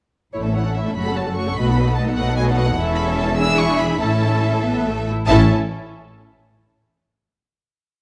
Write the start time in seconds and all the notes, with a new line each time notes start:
0.33 A1 A2 A3 E4 C#5
0.44 C#4 A4 E5
0.54 A3 E4 C#5 F#5
0.66 C#4 A4 E5
0.74 A3 E4 C#5 E5
0.85 C#4 A4 E5
0.95 F#1 F#2 A3 F#4 C#5 B5
1.06 C#4 A4 F#5
1.15 A3 F#4 C#5 A5
1.26 C#4 A4 F#5
1.35 A3 F#4 C#5 C#6
1.47 C#4 A4 F#5
1.54 B1 B2 A3 B4 D#5 B5
1.58 F#4
1.68 B3 D#4 A4 F#5
1.78 A3 F#4 B4 D#5
1.88 B3 D#4 A4 F#5
1.94 A3 B4 D#5 A5
1.98 F#4
2.08 B3 D#4 A4 F#5
2.16 B1 B2 A3 F#4 B4 D#5 F#5
2.27 B3 D#4 A4 F#5
2.36 A3 F#4 B4 D#5 G#5
2.47 B3 D#4 A4 F#5
2.56 A3 F#4 B4 D#5 F#5
2.67 B3 D#4 A4 F#5
2.76 E1 E2 C#4 E4 A4 E5
2.95 B5
3.17 A5
3.38 D4 E4 G#4 E5 E6
3.58 C#6
3.79 B5
4.00 A1 A2 C#4 E4 A4 E5 A5
4.65 B3
4.85 A3
5.07 E4
5.28 A1 A2 C#4 E4 A4 E5 A5